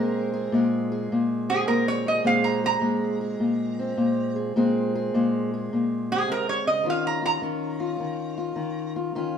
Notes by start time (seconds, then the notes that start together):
Already playing: A#2 G#3 C4 G#4 A#4
0.33 G#4
0.52 A#2 G#3
0.92 G#4
1.12 A#2
1.49 C4 G#4
1.68 A#2 A#4
1.88 C#5
2.06 G#4 D#5
2.24 A#2 G#3 C4 G#4 F5
2.44 A#5
2.64 G#4 A#5
2.81 A#2 G#3
3.21 G#4
3.40 A#2
3.79 C4
3.97 A#2
4.36 G#4
4.56 A#2 G#3 C4 G#4
4.95 G#4
5.14 A#2 G#3
5.54 G#4
5.73 A#2
6.12 C4 G#4
6.28 C3 A#4
6.49 C#5
6.67 C#3 D#5
6.84 D#3 C#4 F4
6.90 F5
7.07 A#5
7.22 F4 A#5
7.42 D#3 C#4
7.80 F4
8.00 D#3
8.38 F4
8.56 D#3
8.96 F4
9.15 D#3 C#4 F4